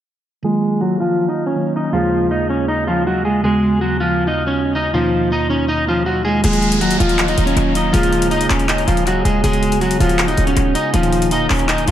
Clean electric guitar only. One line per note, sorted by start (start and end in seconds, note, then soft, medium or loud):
0.44 0.80 G#3 medium
0.44 0.79 G#4 loud
0.81 0.97 F#3 medium
0.81 0.97 F#4 medium
1.00 1.27 F3 medium
1.00 1.27 F4 medium
1.28 1.44 D#4 medium
1.28 1.44 D#5 medium
1.46 1.73 C#4 medium
1.46 1.73 C#5 medium
1.76 1.91 D#4 medium
1.76 1.91 D#5 medium
1.93 2.29 F3 medium
1.93 2.29 F4 loud
2.31 2.46 D#4 medium
2.31 2.47 D#5 medium
2.50 2.65 C#4 medium
2.50 2.66 C#5 medium
2.68 2.84 D#4 medium
2.68 2.84 D#5 medium
2.87 3.03 F3 medium
2.87 3.03 F4 medium
3.07 3.23 F#3 medium
3.07 3.22 F#4 medium
3.25 3.41 G#3 medium
3.25 3.40 G#4 medium
3.44 3.80 G#3 medium
3.44 3.79 G#4 loud
3.81 3.97 F#3 medium
3.81 3.97 F#4 medium
4.00 4.27 F3 medium
4.00 4.27 F4 medium
4.27 4.43 D#4 medium
4.27 4.43 D#5 medium
4.47 4.73 C#4 medium
4.47 4.74 C#5 soft
4.75 4.91 D#4 medium
4.75 4.91 D#5 medium
4.94 5.30 F3 medium
4.94 5.29 F4 medium
5.32 5.47 D#4 medium
5.32 5.48 D#5 medium
5.50 5.65 C#4 medium
5.50 5.66 C#5 medium
5.68 5.84 D#4 medium
5.68 5.84 D#5 medium
5.88 6.04 F3 medium
5.88 6.03 F4 medium
6.06 6.22 F#3 medium
6.06 6.22 F#4 medium
6.25 6.41 G#3 medium
6.25 6.40 G#4 medium
6.45 6.80 G#3 medium
6.45 6.79 G#4 loud
6.81 6.97 F#3 medium
6.81 6.97 F#4 medium
7.00 7.27 F3 medium
7.00 7.27 F4 medium
7.28 7.44 D#4 medium
7.28 7.44 D#5 medium
7.46 7.73 C#4 medium
7.46 7.73 C#5 medium
7.76 7.91 D#4 medium
7.76 7.91 D#5 medium
7.93 8.29 F3 medium
7.93 8.29 F4 loud
8.31 8.46 D#4 loud
8.31 8.47 D#5 medium
8.50 8.65 C#4 medium
8.50 8.66 C#5 medium
8.68 8.84 D#4 medium
8.68 8.84 D#5 medium
8.88 9.03 F3 medium
8.88 9.03 F4 medium
9.07 9.23 F#3 medium
9.07 9.22 F#4 medium
9.25 9.41 G#3 medium
9.25 9.40 G#4 medium
9.44 9.79 G#3 medium
9.44 9.79 G#4 loud
9.81 9.97 F#3 medium
9.81 9.97 F#4 medium
10.01 10.27 F3 medium
10.01 10.27 F4 medium
10.27 10.43 D#4 medium
10.27 10.43 D#5 medium
10.47 10.73 C#4 medium
10.47 10.74 C#5 medium
10.75 10.90 D#4 medium
10.75 10.91 D#5 medium
10.94 11.29 F3 medium
10.94 11.29 F4 medium
11.32 11.47 D#4 medium
11.32 11.47 D#5 medium
11.49 11.65 C#4 medium
11.49 11.66 C#5 medium
11.68 11.84 D#4 medium
11.68 11.84 D#5 medium